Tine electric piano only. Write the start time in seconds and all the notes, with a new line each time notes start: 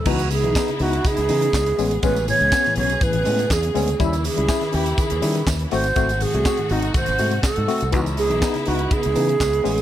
0.07 E3 B3 D#4
0.30 C#3
0.43 E3 B3 D#4
0.56 B3 D#4
0.69 C#3
0.80 B3 D#4
1.06 C#3
1.29 E3 B3 D#4
1.42 B3 D#4
1.78 G#3 B3 C#4
2.03 G#3 B3 C#4
2.28 A2 E3
2.41 G#3 B3 C#4
2.53 B3 C#4
2.67 A2 E3
2.77 B3 C#4
3.02 A2 E3
3.25 G#3 B3 C#4
3.39 B3 C#4
3.74 G#3 B3 C#4
3.99 G3 C#4 E4
4.25 D#3
4.37 G3 C#4 E4
4.49 C#4 E4
4.61 D#3
4.72 C#4 E4
4.98 D#3
5.22 G3 C#4 E4
5.35 C#4 E4
5.72 A3 C4 F#4
5.96 A3 C4 F#4
6.21 G#2 D#3
6.34 A3 C4 F#4
6.45 C4 F#4
6.59 G#2 D#3
6.71 C4 F#4
6.94 G#2 D#3
7.19 A3 C4 F#4
7.33 C4 F#4
7.68 A3 C4 F#4
7.92 E3 B3 D#4
8.18 C#3
8.29 E3 B3 D#4
8.41 B3 D#4
8.55 C#3
8.66 B3 D#4
8.91 C#3
9.15 E3 B3 D#4
9.29 B3 D#4
9.64 G#3 B3 C#4